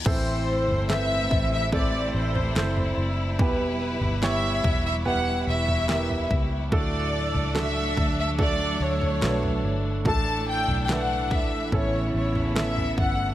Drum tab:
CC |x---------------|----------------|----------------|----------------|
SD |----o-------o---|----o-------o---|----o-------o---|----o-------o---|
FT |o--o--o-o--o-o--|o--o--o-o--o-o--|o--o--o-o--o-o--|o--o--o-o--o-o--|
BD |o-----o-o-------|o-----o-------o-|o-----o-o-------|o-----o-o-----o-|